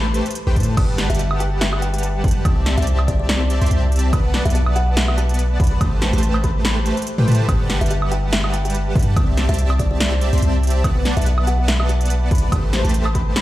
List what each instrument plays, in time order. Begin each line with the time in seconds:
Already playing: 808-style bass A1, analog polysynth A3 G4 B4 C5 A5, kalimba B5
0.14 closed hi-hat
0.26 closed hi-hat
0.31 closed hi-hat
0.35 closed hi-hat
0.47 808-style bass A1, analog polysynth A3 G4 B4 C5 G5
0.56 808-style bass A2, analog polysynth A3 G4 B4 A5, kick, closed hi-hat
0.60 closed hi-hat
0.63 closed hi-hat
0.77 808-style bass G1, analog polysynth G3 B4 F#5 A5, kick, closed hi-hat, crash, high woodblock
0.98 snare, closed hi-hat
1.10 808-style bass G1, analog polysynth G3 G4 B4 F#5, kalimba E5, closed hi-hat
1.15 closed hi-hat
1.19 kalimba E5, closed hi-hat
1.31 high woodblock
1.40 kalimba G5, closed hi-hat
1.61 kalimba E5, snare, closed hi-hat
1.73 kalimba E5, high woodblock
1.82 kalimba G5, closed hi-hat
1.94 kalimba G5, closed hi-hat
1.98 closed hi-hat
2.03 closed hi-hat
2.24 808-style bass G1, analog polysynth G3 G4, kick, closed hi-hat
2.28 closed hi-hat
2.31 closed hi-hat
2.45 808-style bass C2, analog polysynth C4 G4 D5 E5 A5, kick, closed hi-hat, high woodblock
2.66 snare, closed hi-hat
2.78 808-style bass C2, analog polysynth C4 G4 D5 E5 A5, kalimba E5, closed hi-hat
2.82 closed hi-hat
2.87 closed hi-hat
2.99 high woodblock
3.08 kalimba D5, kick, closed hi-hat
3.20 kalimba D5
3.29 kalimba D5, snare, closed hi-hat
3.41 kalimba D5
3.50 closed hi-hat
3.62 808-style bass C2, analog polysynth C4 G4 D5 E5 C6, closed hi-hat
3.66 closed hi-hat
3.71 808-style bass C2, analog polysynth C4 G4 D5 E5 A5, closed hi-hat
3.92 closed hi-hat
3.96 closed hi-hat
3.99 closed hi-hat
4.13 808-style bass B1, analog polysynth B3 B4 D5 F#5 A5, kick, closed hi-hat, high woodblock
4.34 snare, closed hi-hat
4.45 808-style bass B1, analog polysynth B3 B4 D5 F#5 A5, kalimba E5, closed hi-hat
4.50 closed hi-hat
4.55 kalimba E5, closed hi-hat
4.66 high woodblock
4.76 kalimba F#5, closed hi-hat
4.97 kalimba E5, snare, closed hi-hat
5.08 kalimba E5, high woodblock
5.18 kalimba A5, closed hi-hat
5.29 closed hi-hat
5.34 closed hi-hat
5.39 closed hi-hat
5.60 808-style bass B1, kalimba B5, kick, closed hi-hat
5.64 closed hi-hat
5.67 closed hi-hat
5.71 kalimba B5
5.81 808-style bass A1, analog polysynth A3 G4 B4 C5 A5, kick, closed hi-hat, high woodblock
6.02 kalimba A5, snare, closed hi-hat
6.13 808-style bass A1, analog polysynth A3 G4 B4 C5 A5, kalimba A5, closed hi-hat
6.18 closed hi-hat
6.23 closed hi-hat
6.34 high woodblock
6.44 kalimba B5, kick, closed hi-hat
6.65 kalimba B5, snare, closed hi-hat
6.86 closed hi-hat
6.97 closed hi-hat
7.02 closed hi-hat
7.07 closed hi-hat
7.18 808-style bass A2, analog polysynth A3 G4 B4 C5 G5
7.28 808-style bass A2, analog polysynth A3 G4 B4 C5 A5, closed hi-hat
7.32 closed hi-hat
7.35 closed hi-hat
7.49 808-style bass G1, analog polysynth G3 G4 B4 F#5 A5, kick, closed hi-hat, high woodblock
7.70 snare, closed hi-hat
7.81 808-style bass G1, analog polysynth G3 G4 B4 F#5 A5, kalimba E5, closed hi-hat
7.86 closed hi-hat
7.91 kalimba E5, closed hi-hat
8.02 high woodblock
8.12 kalimba G5, closed hi-hat
8.33 kalimba E5, snare, closed hi-hat
8.44 kalimba E5, high woodblock
8.53 kalimba G5, closed hi-hat
8.65 kalimba G5, closed hi-hat
8.70 closed hi-hat
8.75 closed hi-hat
8.95 808-style bass G2, analog polysynth G3 G4 B4 A5, kick, closed hi-hat
8.99 closed hi-hat
9.03 closed hi-hat
9.16 808-style bass C2, analog polysynth C4 G4 D5 E5 A5, kick, closed hi-hat, high woodblock
9.37 snare, closed hi-hat
9.49 808-style bass C2, analog polysynth C4 G4 D5 E5 A5, kalimba E5, closed hi-hat
9.54 closed hi-hat
9.59 closed hi-hat
9.70 high woodblock
9.79 kalimba D5, kick, closed hi-hat
9.91 kalimba D5
10.00 kalimba D5, snare, closed hi-hat
10.12 kalimba D5
10.21 closed hi-hat
10.33 808-style bass C2, analog polysynth C4 G4 D5 E5 C6, closed hi-hat
10.38 closed hi-hat
10.42 808-style bass C2, analog polysynth C4 G4 D5 E5 A5, closed hi-hat
10.63 closed hi-hat
10.67 closed hi-hat
10.70 closed hi-hat
10.84 808-style bass B1, analog polysynth B3 B4 D5 F#5 A5, kick, closed hi-hat, high woodblock
11.05 snare, closed hi-hat
11.17 808-style bass B1, analog polysynth B3 B4 D5 F#5 A5, kalimba E5, closed hi-hat
11.22 closed hi-hat
11.26 kalimba E5, closed hi-hat
11.38 high woodblock
11.47 kalimba F#5, closed hi-hat
11.68 kalimba E5, snare, closed hi-hat
11.80 kalimba E5, high woodblock
11.89 kalimba A5, closed hi-hat
12.01 closed hi-hat
12.05 closed hi-hat
12.10 closed hi-hat
12.31 808-style bass B1, kalimba B5, kick, closed hi-hat
12.35 closed hi-hat
12.38 closed hi-hat
12.43 kalimba B5
12.52 808-style bass A1, analog polysynth A3 G4 B4 C5 A5, kick, closed hi-hat, high woodblock
12.73 kalimba A5, snare, closed hi-hat
12.85 808-style bass A1, analog polysynth A3 G4 B4 C5 A5, kalimba A5, closed hi-hat
12.89 closed hi-hat
12.94 closed hi-hat
13.06 high woodblock
13.15 kalimba B5, kick, closed hi-hat
13.36 kalimba B5, snare, closed hi-hat